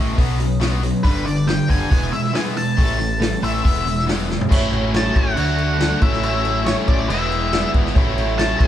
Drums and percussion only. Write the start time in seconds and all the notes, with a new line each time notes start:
0.18 kick, open hi-hat
0.40 open hi-hat
0.61 snare, open hi-hat
0.83 open hi-hat
1.04 kick, open hi-hat
1.27 open hi-hat
1.48 snare, open hi-hat
1.70 kick, open hi-hat
1.91 kick, open hi-hat
2.13 open hi-hat
2.24 snare
2.35 snare, open hi-hat
2.57 open hi-hat
2.78 kick, open hi-hat
3.01 open hi-hat
3.22 snare, open hi-hat
3.44 open hi-hat
3.65 kick, open hi-hat
3.87 open hi-hat
3.99 snare
4.09 snare, open hi-hat
4.31 snare
4.41 floor tom
4.51 kick, crash
4.73 crash
4.94 snare, crash
5.16 kick, crash
5.37 crash
5.58 crash
5.80 snare, crash
6.02 kick, crash
6.13 snare
6.23 crash
6.45 crash
6.66 snare, crash
6.88 kick, crash
7.10 crash
7.32 crash
7.53 snare, crash
7.74 kick, crash
7.86 snare
7.96 kick, crash
8.18 crash
8.39 snare, crash
8.60 kick, crash